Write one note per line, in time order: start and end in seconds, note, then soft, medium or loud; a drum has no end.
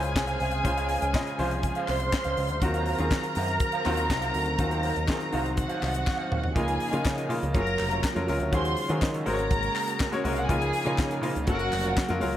0.00 0.16 C#2 medium
0.00 0.63 C#3 medium
0.00 2.57 G#3 medium
0.00 0.64 C#4 medium
0.00 2.58 C#4 medium
0.00 2.64 E4 medium
0.00 0.64 F4 medium
0.00 1.83 G#4 medium
0.00 0.65 C5 loud
0.00 2.58 C5 medium
0.00 4.55 F5 medium
0.00 1.83 G#5 loud
0.00 muted clean electric guitar stroke soft
0.00 closed hi-hat soft
0.15 0.37 C2 medium
0.15 muted clean electric guitar stroke soft
0.15 kick loud
0.15 snare loud
0.15 clap loud
0.15 clap medium
0.27 0.38 G#4 medium
0.27 0.40 C5 medium
0.27 0.41 F5 medium
0.27 closed hi-hat soft
0.40 0.61 C2 medium
0.40 0.56 G#4 medium
0.40 0.53 C5 medium
0.40 0.51 F5 medium
0.40 open hi-hat medium
0.51 muted clean electric guitar stroke medium
0.51 closed hi-hat soft
0.63 0.96 C#2 loud
0.63 0.98 C#3 medium
0.63 0.98 C#4 medium
0.63 0.98 F4 medium
0.63 0.98 C5 medium
0.63 muted clean electric guitar stroke soft
0.63 kick medium
0.63 closed hi-hat medium
0.77 0.88 G#4 medium
0.77 0.90 C5 medium
0.77 0.90 F5 medium
0.77 closed hi-hat soft
0.89 1.05 G#4 medium
0.89 1.02 C5 medium
0.89 1.01 F5 medium
0.89 open hi-hat medium
1.02 1.12 C#2 medium
1.02 muted clean electric guitar stroke soft
1.02 closed hi-hat soft
1.13 1.30 C#3 medium
1.13 1.31 C#4 medium
1.13 1.31 F4 medium
1.13 1.31 D#5 medium
1.13 kick loud
1.13 snare loud
1.13 clap medium
1.26 muted clean electric guitar stroke soft
1.26 closed hi-hat soft
1.38 1.70 C2 medium
1.38 2.05 F3 medium
1.38 2.05 C#4 medium
1.38 2.06 F4 medium
1.38 1.58 G#4 medium
1.38 1.52 C5 medium
1.38 2.06 C5 medium
1.38 1.50 F5 loud
1.38 open hi-hat medium
1.51 muted clean electric guitar stroke soft
1.51 closed hi-hat soft
1.63 muted clean electric guitar stroke soft
1.63 kick medium
1.63 closed hi-hat medium
1.75 1.87 G#4 medium
1.75 1.88 C5 medium
1.75 1.89 F5 medium
1.75 closed hi-hat soft
1.88 2.09 C2 medium
1.88 2.04 G#4 medium
1.88 2.60 C5 medium
1.88 2.01 C5 medium
1.88 2.00 F5 medium
1.88 2.60 C6 medium
1.88 clap medium
1.88 open hi-hat medium
2.00 muted clean electric guitar stroke medium
2.00 closed hi-hat soft
2.12 muted clean electric guitar stroke soft
2.12 kick loud
2.12 snare loud
2.12 clap loud
2.12 clap medium
2.24 2.36 C#2 medium
2.24 2.36 G#4 medium
2.24 2.37 C5 medium
2.24 2.38 F5 medium
2.24 closed hi-hat soft
2.37 2.51 C#2 medium
2.37 2.53 G#4 medium
2.37 2.50 C5 medium
2.37 2.49 F5 medium
2.37 open hi-hat medium
2.49 2.60 D2 medium
2.49 muted clean electric guitar stroke medium
2.49 closed hi-hat soft
2.62 2.93 D#2 medium
2.62 2.87 D#3 medium
2.62 6.52 D#3 medium
2.62 6.52 F#3 medium
2.62 2.87 C4 medium
2.62 6.52 C4 medium
2.62 2.87 F4 medium
2.62 2.87 F#4 medium
2.62 5.53 A#4 medium
2.62 5.53 A#5 medium
2.62 muted clean electric guitar stroke soft
2.62 kick loud
2.62 closed hi-hat medium
2.74 2.86 F#4 medium
2.74 2.87 C5 medium
2.74 2.87 F5 medium
2.74 closed hi-hat soft
2.86 3.02 F#4 medium
2.86 3.00 C5 medium
2.86 2.99 F5 medium
2.86 open hi-hat medium
2.98 3.10 D#2 medium
2.98 3.57 D#3 medium
2.98 3.57 C4 medium
2.98 3.58 F4 medium
2.98 3.58 G#4 medium
2.98 closed hi-hat soft
3.11 muted clean electric guitar stroke soft
3.11 kick loud
3.11 snare loud
3.11 clap medium
3.23 muted clean electric guitar stroke medium
3.23 closed hi-hat soft
3.35 3.57 F#2 medium
3.35 3.56 F#4 loud
3.35 3.48 C5 medium
3.35 3.47 F5 loud
3.35 open hi-hat medium
3.48 muted clean electric guitar stroke soft
3.48 closed hi-hat soft
3.60 muted clean electric guitar stroke soft
3.60 kick loud
3.60 closed hi-hat medium
3.72 3.85 F#4 medium
3.72 3.86 C5 medium
3.72 3.87 F5 medium
3.72 closed hi-hat soft
3.85 4.06 D#2 loud
3.85 4.35 D#3 medium
3.85 4.35 C4 medium
3.85 4.36 F4 medium
3.85 4.01 F#4 medium
3.85 4.36 F#4 loud
3.85 3.98 C5 medium
3.85 3.97 F5 medium
3.85 clap medium
3.85 open hi-hat medium
3.97 muted clean electric guitar stroke soft
3.97 closed hi-hat soft
4.09 4.31 C2 medium
4.09 muted clean electric guitar stroke soft
4.09 kick loud
4.09 snare loud
4.09 clap loud
4.09 clap medium
4.21 4.33 F#4 medium
4.21 4.34 C5 medium
4.21 4.35 F5 medium
4.21 closed hi-hat soft
4.34 4.55 D2 medium
4.34 muted clean electric guitar stroke soft
4.34 open hi-hat medium
4.46 muted clean electric guitar stroke soft
4.46 closed hi-hat soft
4.58 4.90 D#2 loud
4.58 4.92 D#3 medium
4.58 4.92 C4 medium
4.58 6.54 D#4 medium
4.58 4.92 F4 medium
4.58 4.93 F#4 medium
4.58 muted clean electric guitar stroke soft
4.58 kick loud
4.58 closed hi-hat medium
4.70 4.82 F#4 medium
4.70 4.83 C5 medium
4.70 4.83 F5 medium
4.70 closed hi-hat soft
4.83 4.99 F#4 medium
4.83 4.95 C5 medium
4.83 4.94 F5 medium
4.83 open hi-hat medium
4.95 5.07 D#2 medium
4.95 muted clean electric guitar stroke soft
4.95 closed hi-hat soft
5.07 5.24 D#3 medium
5.07 5.25 C4 medium
5.07 5.25 F4 medium
5.07 5.25 G#4 medium
5.07 muted clean electric guitar stroke soft
5.07 kick loud
5.07 snare loud
5.07 clap medium
5.10 clap medium
5.20 muted clean electric guitar stroke soft
5.20 closed hi-hat soft
5.31 5.64 C2 medium
5.31 5.99 D#3 medium
5.31 6.00 C4 medium
5.31 6.00 D#4 medium
5.31 5.52 F#4 medium
5.31 6.00 F#4 medium
5.31 5.44 C5 medium
5.31 5.43 F5 loud
5.31 open hi-hat medium
5.44 muted clean electric guitar stroke soft
5.44 closed hi-hat soft
5.56 6.54 F#4 medium
5.56 6.54 F#5 medium
5.56 muted clean electric guitar stroke soft
5.56 kick loud
5.56 closed hi-hat medium
5.68 5.79 F#4 medium
5.68 5.81 C5 medium
5.68 5.81 F5 medium
5.68 closed hi-hat soft
5.81 6.03 C2 medium
5.81 5.97 F#4 medium
5.81 5.93 C5 medium
5.81 5.91 F5 medium
5.81 clap medium
5.81 open hi-hat medium
5.93 muted clean electric guitar stroke soft
5.93 closed hi-hat soft
6.05 muted clean electric guitar stroke soft
6.05 kick loud
6.05 snare medium
6.05 clap medium
6.17 6.29 F#4 medium
6.17 6.30 C5 medium
6.17 6.31 F5 medium
6.30 6.53 D#2 medium
6.30 6.46 F#4 medium
6.30 6.42 C5 medium
6.30 6.41 F5 medium
6.30 mid tom medium
6.42 muted clean electric guitar stroke soft
6.42 floor tom medium
6.54 6.77 C#2 loud
6.54 6.81 C#3 medium
6.54 11.44 C#3 medium
6.54 7.53 F3 medium
6.54 6.81 A#3 medium
6.54 7.53 A#3 medium
6.54 7.53 D#4 medium
6.54 6.81 D#4 medium
6.54 6.75 F4 medium
6.54 6.81 F4 medium
6.54 7.28 G#4 medium
6.54 6.66 A#4 medium
6.54 6.65 D#5 medium
6.54 7.28 G#5 medium
6.54 kick loud
6.54 closed hi-hat medium
6.66 muted clean electric guitar stroke soft
6.66 closed hi-hat soft
6.79 muted clean electric guitar stroke soft
6.79 open hi-hat medium
6.91 7.17 C#3 medium
6.91 7.04 C#3 loud
6.91 7.18 A#3 medium
6.91 7.18 D#4 medium
6.91 7.03 F4 soft
6.91 7.18 F4 medium
6.91 7.03 A#4 medium
6.91 7.04 D#5 medium
6.91 closed hi-hat soft
7.05 7.26 C#3 loud
7.05 kick loud
7.05 snare loud
7.05 clap loud
7.07 clap medium
7.16 7.27 F4 medium
7.16 7.28 A#4 medium
7.16 7.30 D#5 medium
7.16 closed hi-hat soft
7.28 7.54 C#3 medium
7.28 7.54 A#3 medium
7.28 7.54 D#4 medium
7.28 7.45 F4 medium
7.28 7.54 F4 medium
7.28 7.41 A#4 medium
7.28 7.40 F5 medium
7.28 open hi-hat medium
7.41 7.53 C#2 medium
7.41 muted clean electric guitar stroke medium
7.41 closed hi-hat soft
7.53 7.75 F#1 medium
7.53 8.04 F#3 medium
7.53 9.25 F#3 medium
7.53 8.52 A#3 medium
7.53 8.04 C#4 medium
7.53 7.73 F4 medium
7.53 9.25 F4 medium
7.53 8.04 F4 medium
7.53 7.61 G#4 medium
7.53 7.66 A#4 medium
7.53 8.26 A#4 medium
7.53 7.65 C#5 medium
7.53 8.27 A#5 loud
7.53 kick loud
7.53 closed hi-hat medium
7.62 8.07 A#4 loud
7.66 muted clean electric guitar stroke medium
7.66 closed hi-hat soft
7.79 8.00 F1 medium
7.79 muted clean electric guitar stroke soft
7.79 clap medium
7.79 open hi-hat medium
7.90 8.01 F4 medium
7.90 8.02 A#4 medium
7.90 8.03 C#5 medium
7.90 closed hi-hat medium
8.03 muted clean electric guitar stroke soft
8.03 kick loud
8.03 snare loud
8.03 clap loud
8.05 clap loud
8.15 8.27 F2 medium
8.15 8.24 F#3 medium
8.15 8.24 C#4 medium
8.15 8.24 F4 medium
8.15 8.25 A#4 loud
8.15 muted clean electric guitar stroke soft
8.15 closed hi-hat soft
8.27 8.39 C#2 medium
8.27 8.45 F#3 medium
8.27 8.45 C#4 medium
8.27 8.40 F4 medium
8.27 8.45 F4 medium
8.27 8.39 A#4 medium
8.27 8.45 A#4 loud
8.27 8.38 C#5 medium
8.27 open hi-hat medium
8.39 8.51 D2 medium
8.39 8.51 F4 medium
8.39 8.52 A#4 medium
8.39 8.52 C#5 medium
8.39 closed hi-hat soft
8.51 8.74 D#2 loud
8.51 8.77 D#3 medium
8.51 10.48 G#3 medium
8.51 8.78 C#4 medium
8.51 8.78 F4 medium
8.51 8.72 F#4 medium
8.51 8.78 F#4 medium
8.51 8.64 G#4 medium
8.51 8.78 G#4 loud
8.51 9.01 C5 medium
8.51 8.63 C#5 loud
8.51 9.01 C6 medium
8.51 kick loud
8.51 closed hi-hat medium
8.64 muted clean electric guitar stroke soft
8.64 closed hi-hat soft
8.76 muted clean electric guitar stroke soft
8.76 open hi-hat medium
8.88 9.14 D#3 medium
8.88 9.00 D#3 medium
8.88 9.14 C#4 medium
8.88 9.14 F4 medium
8.88 9.15 F#4 medium
8.88 9.00 F#4 medium
8.88 9.00 G#4 medium
8.88 9.15 G#4 medium
8.88 9.01 C#5 medium
8.88 closed hi-hat soft
9.01 9.23 D#3 loud
9.01 muted clean electric guitar stroke soft
9.01 kick loud
9.01 snare loud
9.01 clap medium
9.03 clap loud
9.13 9.25 F#4 medium
9.13 9.26 G#4 medium
9.13 9.27 C#5 loud
9.13 closed hi-hat soft
9.26 9.68 G#1 loud
9.26 9.95 G#3 medium
9.26 12.37 A#3 medium
9.26 9.42 C#4 medium
9.26 9.95 F#4 medium
9.26 9.39 F#4 medium
9.26 10.48 F#4 medium
9.26 10.10 A#4 medium
9.26 9.95 A#4 medium
9.26 9.38 C5 medium
9.26 9.33 C5 medium
9.26 10.10 A#5 loud
9.26 open hi-hat medium
9.33 9.99 C#5 loud
9.39 muted clean electric guitar stroke soft
9.39 closed hi-hat soft
9.51 muted clean electric guitar stroke soft
9.51 kick loud
9.51 closed hi-hat medium
9.63 muted clean electric guitar stroke soft
9.63 closed hi-hat soft
9.75 clap medium
9.75 open hi-hat medium
9.87 muted clean electric guitar stroke soft
9.87 closed hi-hat medium
10.00 muted clean electric guitar stroke soft
10.00 kick loud
10.00 snare loud
10.00 clap loud
10.01 clap loud
10.11 10.20 G#3 medium
10.11 10.21 F#4 medium
10.11 10.21 A#4 medium
10.11 10.21 C#5 loud
10.11 muted clean electric guitar stroke soft
10.11 closed hi-hat soft
10.15 10.24 C#4 medium
10.15 10.25 C#5 medium
10.24 10.46 C2 medium
10.24 10.41 G#3 medium
10.24 10.37 C#4 medium
10.24 10.33 D#4 medium
10.24 10.41 F#4 medium
10.24 10.36 F#4 medium
10.24 10.42 A#4 medium
10.24 10.36 A#4 medium
10.24 10.42 C#5 loud
10.24 10.33 D#5 medium
10.24 open hi-hat medium
10.32 10.41 F4 medium
10.32 10.41 F5 medium
10.36 10.48 C#4 medium
10.36 10.49 F#4 medium
10.36 10.49 A#4 medium
10.36 closed hi-hat soft
10.40 10.49 F#4 medium
10.40 10.49 F#5 loud
10.48 10.70 C#2 loud
10.48 10.74 C#3 medium
10.48 11.47 F3 medium
10.48 10.74 A#3 medium
10.48 10.69 D#4 medium
10.48 10.74 D#4 medium
10.48 11.48 D#4 medium
10.48 10.61 F4 medium
10.48 10.75 F4 medium
10.48 11.21 G#4 loud
10.48 10.60 A#4 loud
10.48 11.21 G#5 loud
10.48 kick loud
10.48 closed hi-hat medium
10.61 muted clean electric guitar stroke soft
10.61 closed hi-hat soft
10.73 muted clean electric guitar stroke soft
10.73 open hi-hat medium
10.85 11.11 C#3 medium
10.85 10.97 C#3 loud
10.85 11.11 A#3 medium
10.85 11.11 D#4 medium
10.85 10.97 D#4 medium
10.85 11.11 F4 medium
10.85 10.97 F4 medium
10.85 10.98 A#4 medium
10.85 closed hi-hat soft
10.98 11.19 C#3 loud
10.98 muted clean electric guitar stroke soft
10.98 kick loud
10.98 snare loud
10.98 clap medium
11.00 clap medium
11.10 11.21 D#4 medium
11.10 11.22 F4 medium
11.10 11.23 A#4 medium
11.10 closed hi-hat soft
11.21 11.47 C#3 medium
11.21 11.47 A#3 medium
11.21 11.38 D#4 medium
11.21 11.48 D#4 medium
11.21 11.35 F4 medium
11.21 11.48 F4 loud
11.21 11.34 C5 medium
11.21 open hi-hat medium
11.35 11.46 C#2 medium
11.35 muted clean electric guitar stroke medium
11.35 closed hi-hat soft
11.47 11.69 F#1 loud
11.47 12.37 C#3 medium
11.47 11.97 F#3 loud
11.47 12.37 F#3 medium
11.47 11.67 C#4 medium
11.47 11.97 C#4 medium
11.47 11.59 F4 medium
11.47 12.37 F#4 medium
11.47 12.20 F#4 loud
11.47 11.97 F#4 medium
11.47 11.54 A4 medium
11.47 11.58 A#4 medium
11.47 12.20 F#5 loud
11.47 kick loud
11.47 closed hi-hat medium
11.55 12.00 A#4 loud
11.59 muted clean electric guitar stroke soft
11.59 closed hi-hat soft
11.72 11.93 F1 medium
11.72 muted clean electric guitar stroke soft
11.72 clap medium
11.72 open hi-hat medium
11.83 11.95 C#4 medium
11.83 11.96 F4 medium
11.83 11.97 A#4 medium
11.83 closed hi-hat soft
11.97 kick loud
11.97 snare loud
11.97 clap loud
11.97 clap medium
12.08 12.20 F2 medium
12.08 12.17 F#3 medium
12.08 12.18 C#4 medium
12.08 12.18 F4 medium
12.08 12.18 A#4 loud
12.08 muted clean electric guitar stroke soft
12.08 closed hi-hat soft
12.20 12.32 C#2 medium
12.20 12.37 F#3 loud
12.20 12.35 C#4 medium
12.20 12.37 C#4 medium
12.20 12.37 F4 medium
12.20 12.33 F4 medium
12.20 12.37 A#4 loud
12.20 12.33 A#4 medium
12.20 open hi-hat medium
12.33 12.37 A#4 medium
12.33 closed hi-hat soft